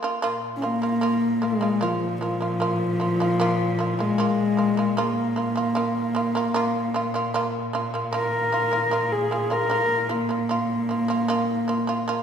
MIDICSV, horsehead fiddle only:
0, 0, Header, 1, 2, 480
1, 0, Start_track
1, 0, Tempo, 790514
1, 137, Time_signature, 4, 2, 24, 8
1, 7425, End_track
2, 0, Start_track
2, 0, Title_t, "Horsehead fiddle"
2, 0, Program_c, 0, 110
2, 344, Note_on_c, 0, 61, 66
2, 395, Note_on_c, 0, 58, 88
2, 404, Note_off_c, 0, 61, 0
2, 872, Note_on_c, 0, 56, 84
2, 881, Note_off_c, 0, 58, 0
2, 1107, Note_on_c, 0, 53, 79
2, 1116, Note_off_c, 0, 56, 0
2, 1343, Note_off_c, 0, 53, 0
2, 1346, Note_on_c, 0, 53, 94
2, 2429, Note_on_c, 0, 56, 87
2, 2438, Note_off_c, 0, 53, 0
2, 3020, Note_on_c, 0, 58, 84
2, 3029, Note_off_c, 0, 56, 0
2, 4640, Note_off_c, 0, 58, 0
2, 4945, Note_on_c, 0, 70, 91
2, 5539, Note_on_c, 0, 68, 83
2, 5548, Note_off_c, 0, 70, 0
2, 5785, Note_on_c, 0, 70, 93
2, 5794, Note_off_c, 0, 68, 0
2, 6135, Note_on_c, 0, 58, 81
2, 6144, Note_off_c, 0, 70, 0
2, 7425, Note_off_c, 0, 58, 0
2, 7425, End_track
0, 0, End_of_file